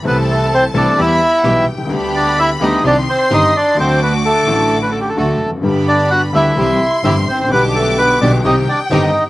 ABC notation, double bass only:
X:1
M:4/4
L:1/8
Q:1/4=129
K:G
V:1 name="Double bass" clef=bass
C,,3 C,, E,, z B,,, C,, | D,,3 D,, C,, z G,,, z | D,,3 A,,,3 D,, =F,,, | G,,,3 D,, C,, z G,,, A,,, |
B,,,3 B,,, C,, z G,,, z |]